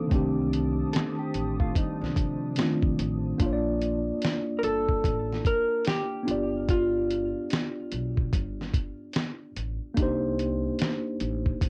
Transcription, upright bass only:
0.11 C2
1.35 A1
2.01 C2
2.16 C3
2.83 C2
2.99 A1
3.40 A#1
4.63 G1
5.04 A1
6.28 G1
7.92 B1
8.33 G1
9.57 A1
9.98 C2
11.21 A1
11.62 A#1

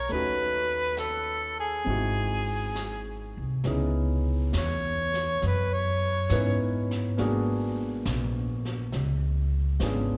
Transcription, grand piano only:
Already playing: C#4 F#4 G#4
0.09 A3 C#4 D#4
0.14 F#4
1.84 C4 D#4 E4
1.90 F#4
3.65 B3 C#4 D#4 E4 G#4
6.31 B3 C#4 D#4 E4 B4
7.17 A#3 B3 D4 F#4 G#4
9.81 B3 C#4 D4 F4 G#4

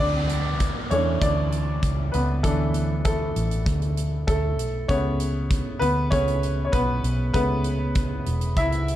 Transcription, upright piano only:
0.00 D4 D5
0.91 E3 A3 C#4 D4 C#5
1.22 D4 D5
2.12 B3 B4
2.43 E3 A3 D4 A4
3.05 A3 A4
4.27 A3 A4
4.88 C#3 A3 B3 C#4 C#5
5.79 B3 B4
6.11 C#3 A3 B3 C#4 C#5
6.65 C#5
6.72 B3 B4
7.34 C#3 A3 B3 B4
8.57 E4 E5

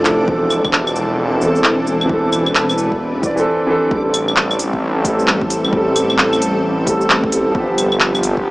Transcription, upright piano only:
Already playing: F3 E4 A4
0.03 F3 E4
0.07 A4
0.24 E3 C4
0.32 A4
1.37 E3
1.42 C4 A4
2.06 E3
2.10 C4
2.14 A4
3.22 E3 C4 D5
3.36 E3 C4 A4
3.67 E3 C4 A4
3.87 G3
3.91 C4
3.95 A4
5.00 G3
5.05 C4 A4
5.69 G3 C4
5.77 A4
6.85 G3 C4
6.89 A4
7.31 G3 C4 A4
7.51 F3
7.55 B3 G4

